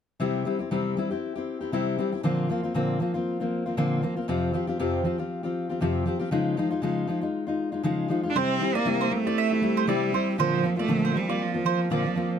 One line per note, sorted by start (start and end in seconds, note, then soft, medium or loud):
0.20 0.45 C3 medium
0.20 0.44 G3 medium
0.20 0.45 C4 medium
0.20 0.46 E4 medium
0.20 0.46 G4 medium
0.45 0.59 G3 medium
0.45 0.60 C4 medium
0.45 0.59 E4 medium
0.45 0.58 G4 medium
0.59 0.71 C4 soft
0.59 0.71 E4 soft
0.59 0.71 G4 soft
0.71 0.97 C3 medium
0.71 0.96 G3 medium
0.71 0.97 C4 medium
0.71 0.97 E4 medium
0.71 0.97 G4 medium
0.97 1.11 G3 medium
0.97 1.11 C4 medium
0.97 1.11 E4 medium
0.97 1.09 G4 medium
1.11 1.37 C4 soft
1.11 1.36 E4 soft
1.11 1.34 G4 soft
1.35 1.62 C4 soft
1.35 1.61 E4 soft
1.35 1.59 G4 soft
1.61 1.72 C4 soft
1.61 1.72 E4 soft
1.61 1.73 G4 soft
1.72 1.98 C3 medium
1.72 1.97 G3 medium
1.72 1.97 C4 medium
1.72 1.98 E4 medium
1.72 1.99 G4 medium
1.98 2.12 G3 soft
1.98 2.13 C4 medium
1.98 2.12 E4 soft
1.98 2.11 G4 medium
2.12 2.23 C4 soft
2.12 2.24 E4 soft
2.12 2.24 G4 soft
2.23 2.49 A#2 medium
2.23 2.49 D3 medium
2.23 2.48 F3 medium
2.23 2.49 A#3 medium
2.23 2.49 C4 medium
2.23 2.50 F4 medium
2.49 2.63 F3 medium
2.49 2.64 A#3 medium
2.49 2.63 C4 medium
2.49 2.62 F4 medium
2.63 2.74 F3 soft
2.63 2.74 A#3 soft
2.63 2.74 C4 soft
2.63 2.75 F4 soft
2.74 3.00 A#2 medium
2.74 3.00 D3 medium
2.74 2.99 F3 medium
2.74 2.99 A#3 medium
2.74 3.00 C4 medium
2.74 3.01 F4 medium
3.00 3.14 F3 medium
3.00 3.14 A#3 medium
3.00 3.14 C4 medium
3.00 3.13 F4 medium
3.14 3.41 F3 soft
3.14 3.40 A#3 soft
3.14 3.40 C4 soft
3.14 3.39 F4 soft
3.40 3.67 F3 soft
3.40 3.66 A#3 soft
3.40 3.65 C4 soft
3.40 3.65 F4 soft
3.66 3.76 F3 soft
3.66 3.77 A#3 soft
3.66 3.77 C4 soft
3.66 3.77 F4 soft
3.77 4.03 A#2 medium
3.77 4.03 D3 medium
3.77 4.01 F3 medium
3.77 4.02 A#3 medium
3.77 4.02 C4 medium
3.77 4.03 F4 medium
4.02 4.16 F3 medium
4.02 4.16 A#3 medium
4.02 4.16 C4 medium
4.02 4.15 F4 medium
4.16 4.28 F3 soft
4.16 4.28 A#3 soft
4.16 4.27 C4 soft
4.16 4.28 F4 soft
4.28 4.53 F2 medium
4.28 4.54 C3 medium
4.28 4.52 F3 medium
4.28 4.53 C4 medium
4.28 4.53 F4 medium
4.28 4.54 G4 medium
4.53 4.67 F3 medium
4.53 4.67 C4 medium
4.53 4.67 F4 medium
4.53 4.66 G4 medium
4.67 4.78 F3 soft
4.67 4.79 C4 soft
4.67 4.79 F4 soft
4.67 4.79 G4 soft
4.79 5.05 F2 medium
4.79 5.05 C3 medium
4.79 5.03 F3 medium
4.79 5.04 C4 medium
4.79 5.04 F4 medium
4.79 5.05 G4 medium
5.04 5.18 F3 medium
5.04 5.19 C4 medium
5.04 5.18 F4 medium
5.04 5.17 G4 medium
5.18 5.44 F3 soft
5.18 5.44 C4 soft
5.18 5.43 F4 soft
5.18 5.42 G4 soft
5.43 5.70 F3 soft
5.43 5.70 C4 soft
5.43 5.69 F4 soft
5.43 5.68 G4 soft
5.69 5.81 F3 soft
5.69 5.81 C4 soft
5.69 5.81 F4 soft
5.69 5.81 G4 soft
5.81 6.06 F2 medium
5.81 6.07 C3 medium
5.81 6.04 F3 medium
5.81 6.05 C4 medium
5.81 6.06 F4 medium
5.81 6.07 G4 medium
6.06 6.20 F3 medium
6.06 6.20 C4 medium
6.06 6.19 F4 medium
6.06 6.18 G4 medium
6.19 6.31 F3 soft
6.19 6.32 C4 soft
6.19 6.31 F4 soft
6.19 6.31 G4 medium
6.31 6.57 C#3 medium
6.31 6.56 F3 medium
6.31 6.56 G#3 medium
6.31 6.57 D#4 medium
6.31 6.58 F4 medium
6.57 6.71 F3 medium
6.57 6.71 G#3 medium
6.57 6.70 D#4 medium
6.57 6.69 F4 medium
6.70 6.82 G#3 soft
6.70 6.82 D#4 soft
6.70 6.82 F4 soft
6.82 7.08 C#3 medium
6.82 7.06 F3 medium
6.82 7.07 G#3 medium
6.82 7.08 D#4 medium
6.82 7.08 F4 medium
7.07 7.22 F3 medium
7.07 7.22 G#3 medium
7.07 7.21 D#4 soft
7.07 7.20 F4 medium
7.21 7.48 G#3 soft
7.21 7.47 D#4 soft
7.21 7.45 F4 soft
7.47 7.73 G#3 soft
7.47 7.71 D#4 soft
7.47 7.71 F4 soft
7.72 7.83 G#3 soft
7.72 7.83 D#4 soft
7.72 7.84 F4 soft
7.83 8.09 C#3 medium
7.83 8.07 F3 medium
7.83 8.08 G#3 medium
7.83 8.09 D#4 medium
7.83 8.10 F4 medium
8.08 8.23 F3 soft
8.08 8.24 G#3 medium
8.08 8.23 D#4 medium
8.08 8.22 F4 medium
8.23 8.36 G#3 soft
8.23 8.36 D#4 soft
8.23 8.35 F4 soft
8.30 8.39 D4 medium
8.35 8.61 C3 medium
8.35 8.59 G3 medium
8.35 8.60 C4 medium
8.35 8.77 C4 medium
8.35 8.61 E4 medium
8.35 8.61 G4 medium
8.35 8.60 C5 medium
8.60 8.75 G3 medium
8.60 8.75 C4 medium
8.60 8.74 E4 medium
8.60 8.73 G4 medium
8.75 9.14 A#3 medium
8.75 8.84 C4 soft
8.75 8.85 E4 soft
8.75 8.86 G4 soft
8.75 8.86 D5 medium
8.85 9.11 C3 medium
8.85 9.09 G3 medium
8.85 9.10 C4 medium
8.85 9.10 E4 medium
8.85 9.11 G4 medium
9.01 9.12 C5 medium
9.10 9.25 G3 soft
9.10 9.90 A3 medium
9.10 9.26 C4 medium
9.10 9.25 E4 medium
9.10 9.24 G4 medium
9.25 9.51 C4 soft
9.25 9.51 E4 soft
9.25 9.49 G4 soft
9.25 9.37 D5 medium
9.38 9.51 E5 medium
9.50 9.61 C4 soft
9.50 9.62 E4 soft
9.50 9.62 G4 soft
9.62 9.86 G3 soft
9.62 9.87 C4 soft
9.62 9.87 E4 medium
9.62 9.88 G4 medium
9.77 9.88 C5 medium
9.87 10.13 C3 medium
9.87 10.11 G3 medium
9.87 10.39 G3 medium
9.87 10.12 C4 medium
9.87 10.13 E4 medium
9.87 10.14 G4 medium
9.87 10.02 D5 medium
10.12 10.38 G3 soft
10.12 10.38 C4 soft
10.12 10.39 E4 medium
10.12 10.39 G4 medium
10.12 10.27 C5 medium
10.38 10.64 A#2 medium
10.38 10.64 D3 medium
10.38 10.62 F3 medium
10.38 10.76 F3 medium
10.38 10.63 A#3 medium
10.38 10.63 C4 medium
10.38 10.64 F4 medium
10.38 10.63 C5 medium
10.63 10.78 F3 medium
10.63 10.77 A#3 medium
10.63 10.76 C4 medium
10.63 10.76 F4 medium
10.77 10.87 F3 soft
10.77 11.18 A3 medium
10.77 10.88 A#3 soft
10.77 10.88 C4 soft
10.77 10.88 F4 soft
10.77 10.90 D5 medium
10.88 11.14 A#2 medium
10.88 11.14 D3 medium
10.88 11.13 F3 medium
10.88 11.14 A#3 medium
10.88 11.15 C4 medium
10.88 11.15 F4 medium
11.05 11.15 C5 medium
11.14 11.29 F3 medium
11.14 11.44 G3 medium
11.14 11.29 A#3 soft
11.14 11.28 C4 medium
11.14 11.27 F4 medium
11.29 11.55 F3 soft
11.29 11.54 A#3 soft
11.29 11.54 C4 soft
11.29 11.53 F4 medium
11.29 11.54 D5 medium
11.42 11.92 F3 medium
11.54 11.64 F3 soft
11.54 11.64 A#3 soft
11.54 11.65 C4 soft
11.54 11.66 F4 soft
11.65 11.90 F3 medium
11.65 11.90 A#3 medium
11.65 11.90 C4 medium
11.65 11.90 F4 medium
11.65 11.79 C5 medium
11.90 12.05 A#2 medium
11.90 12.05 D3 medium
11.90 12.05 F3 medium
11.90 12.29 F3 medium
11.90 12.05 A#3 medium
11.90 12.05 C4 medium
11.90 12.04 F4 medium
11.90 12.29 D5 medium
12.05 12.14 F3 soft
12.05 12.15 A#3 soft
12.05 12.16 C4 soft
12.05 12.16 F4 soft
12.15 12.39 F3 medium
12.15 12.39 A#3 medium
12.15 12.39 C4 medium
12.15 12.39 F4 medium